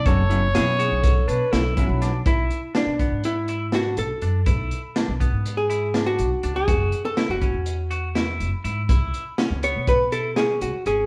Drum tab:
HH |xxxxxxxxx|xxxxxxxxx|xxxxxxxxx|xxxxxxxxx|
SD |--o---o-o|--o---o--|--o---o--|--o---o--|
BD |o---o--o-|o--o-----|o--o-----|o--o-----|

HH |xxxxxxxxx|
SD |--o---o--|
BD |o---o----|